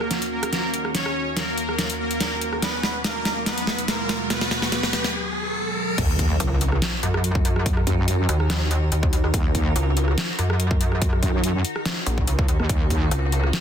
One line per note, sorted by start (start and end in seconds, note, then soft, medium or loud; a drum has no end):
0.00 2.59 D#2 medium
0.00 2.59 D#3 medium
0.00 0.24 A#3 medium
0.00 2.59 C#4 medium
0.00 2.59 F#4 medium
0.00 0.24 A#4 loud
0.00 cross-stick medium
0.00 riser medium
0.11 snare soft
0.11 closed hi-hat medium
0.22 closed hi-hat medium
0.32 0.87 A#3 medium
0.32 0.87 A#4 loud
0.43 cross-stick medium
0.43 closed hi-hat medium
0.53 snare medium
0.53 closed hi-hat medium
0.74 closed hi-hat medium
0.85 cross-stick medium
0.95 1.30 C#4 medium
0.95 1.30 C#5 medium
0.95 snare medium
0.95 closed hi-hat medium
1.06 cross-stick medium
1.37 1.92 A#3 medium
1.37 1.92 A#4 loud
1.37 snare medium
1.37 closed hi-hat medium
1.58 closed hi-hat medium
1.69 cross-stick medium
1.79 snare medium
1.79 closed hi-hat medium
1.90 closed hi-hat medium
2.00 2.55 A#3 medium
2.00 2.55 A#4 loud
2.11 closed hi-hat medium
2.20 snare medium
2.20 closed hi-hat medium
2.41 closed hi-hat medium
2.53 cross-stick medium
2.62 5.95 D#2 medium
2.62 5.95 B2 medium
2.62 5.95 F#3 medium
2.62 5.95 G#3 loud
2.62 2.98 B3 medium
2.62 2.98 B4 medium
2.62 snare medium
2.62 closed hi-hat medium
2.83 snare medium
3.04 3.45 A#3 medium
3.04 3.45 A#4 medium
3.04 snare medium
3.04 closed hi-hat medium
3.25 snare medium
3.25 closed hi-hat medium
3.46 3.82 B3 medium
3.46 3.82 B4 loud
3.46 snare medium
3.46 closed hi-hat medium
3.58 closed hi-hat medium
3.67 snare medium
3.78 closed hi-hat medium
3.88 4.29 A#3 medium
3.88 4.29 A#4 medium
3.88 snare medium
3.88 closed hi-hat medium
4.09 snare medium
4.09 closed hi-hat medium
4.30 4.66 B3 medium
4.30 4.66 B4 loud
4.30 snare medium
4.30 closed hi-hat medium
4.41 snare medium
4.51 snare medium
4.62 snare medium
4.72 5.08 B3 medium
4.72 5.08 B4 loud
4.72 snare medium
4.72 closed hi-hat medium
4.83 snare medium
4.93 snare loud
4.93 closed hi-hat medium
5.04 snare medium
5.98 6.38 D#2 loud
5.98 13.60 D#3 medium
5.98 13.60 D#4 medium
5.98 13.60 F#4 medium
5.98 12.68 A#4 loud
5.98 kick loud
5.98 closed hi-hat medium
5.98 crash loud
5.98 impact medium
6.19 kick medium
6.19 closed hi-hat medium
6.40 6.80 C#2 medium
6.40 closed hi-hat medium
6.61 closed hi-hat medium
6.72 cross-stick medium
6.82 snare loud
6.82 closed hi-hat medium
7.03 7.85 F#2 loud
7.03 closed hi-hat medium
7.14 cross-stick medium
7.24 closed hi-hat medium
7.35 kick loud
7.45 closed hi-hat medium
7.56 cross-stick medium
7.66 kick loud
7.66 closed hi-hat medium
7.77 cross-stick medium
7.87 8.27 F#2 loud
7.87 kick medium
7.87 closed hi-hat medium
8.08 closed hi-hat medium
8.29 8.90 D#2 loud
8.29 closed hi-hat medium
8.40 cross-stick medium
8.50 snare loud
8.50 closed hi-hat medium
8.71 closed hi-hat medium
8.92 9.22 D#2 loud
8.92 closed hi-hat medium
9.03 kick loud
9.13 closed hi-hat medium
9.24 9.32 D#2 loud
9.24 cross-stick medium
9.34 9.74 D#2 loud
9.34 kick loud
9.34 closed hi-hat medium
9.55 kick medium
9.55 closed hi-hat medium
9.76 10.16 C#2 loud
9.76 closed hi-hat medium
9.97 closed hi-hat medium
10.08 cross-stick medium
10.18 snare loud
10.18 closed hi-hat medium
10.39 11.21 F#2 loud
10.39 closed hi-hat medium
10.50 cross-stick medium
10.60 closed hi-hat medium
10.71 kick loud
10.81 closed hi-hat medium
10.92 cross-stick soft
11.02 kick loud
11.02 closed hi-hat medium
11.13 cross-stick medium
11.23 11.63 F#2 loud
11.23 kick medium
11.23 closed hi-hat medium
11.44 closed hi-hat medium
11.65 closed hi-hat medium
11.76 cross-stick medium
11.86 snare loud
11.86 closed hi-hat medium
12.06 12.26 A#1 loud
12.06 closed hi-hat medium
12.18 kick medium
12.27 12.47 C#2 medium
12.27 closed hi-hat medium
12.39 kick loud
12.48 12.58 D#2 loud
12.48 closed hi-hat medium
12.60 12.68 D#2 medium
12.60 cross-stick soft
12.69 13.10 D#2 loud
12.69 13.60 G#4 medium
12.69 kick loud
12.69 closed hi-hat medium
12.90 kick medium
12.90 closed hi-hat medium
13.11 13.52 C#2 loud
13.11 closed hi-hat medium
13.32 closed hi-hat medium
13.44 cross-stick medium
13.53 snare loud
13.53 closed hi-hat medium